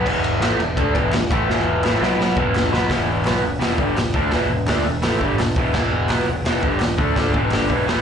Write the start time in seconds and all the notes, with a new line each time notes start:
0.06 E1 E2 B2 E3, kick, crash
0.24 ride
0.40 A1 A2 E3 A3, snare, clap, ride
0.58 E1 E2 B2, ride
0.77 D2 D3 A3 D4, kick, ride
0.94 E1 E2 B2 E3, kick, ride
1.12 E1 E2 B2, snare, clap, ride
1.30 A1 A2 E3 A3, kick, ride
1.48 E1 E2 B2 E3, snare
1.83 A1 A2 E3 A3, snare, clap
2.01 B1 B2 F#3 B3, snare
2.21 snare
2.36 E1 E2 B2 E3, kick
2.55 snare, clap
2.71 B1 B2 F#3 B3, snare
2.89 E1 E2 B2 E3, kick, snare, open hi-hat
3.25 B1 B2 F#3 B3, snare, clap, open hi-hat
3.43 E1 E2 B2
3.60 E1 E2 B2 E3, snare, open hi-hat
3.78 G1 G2 D3 G3, kick
3.96 E1 E2 B2, snare, clap, open hi-hat
4.14 D2 D3 A3 D4, kick
4.31 E1 E2 B2 E3, kick, snare, open hi-hat
4.50 E1 E2 B2
4.67 D2 D3 A3 D4, snare, clap, open hi-hat
4.85 E1 E2 B2
5.02 A1 A2 E3 A3, snare, open hi-hat
5.20 G1 G2 D3 G3, kick
5.39 E1 E2 B2, snare, clap, open hi-hat
5.56 E1 E2 B2 E3, kick
5.73 E1 E2 B2 E3, kick, snare, crash
6.08 B1 B2 F#3 B3, snare, clap, open hi-hat
6.27 E1 E2 B2
6.44 E1 E2 B2 E3, snare, open hi-hat
6.63 G1 G2 D3 G3, kick
6.80 E1 E2 B2, snare, clap, open hi-hat
6.98 D2 D3 A3 D4, kick
7.16 D2 D3 A3 D4, kick, snare, open hi-hat
7.33 E1 E2 B2 E3, kick
7.51 G1 G2 D3 G3, snare, clap, open hi-hat
7.69 E1 E2 B2 E3, kick
7.86 A1 A2 E3 A3, snare, open hi-hat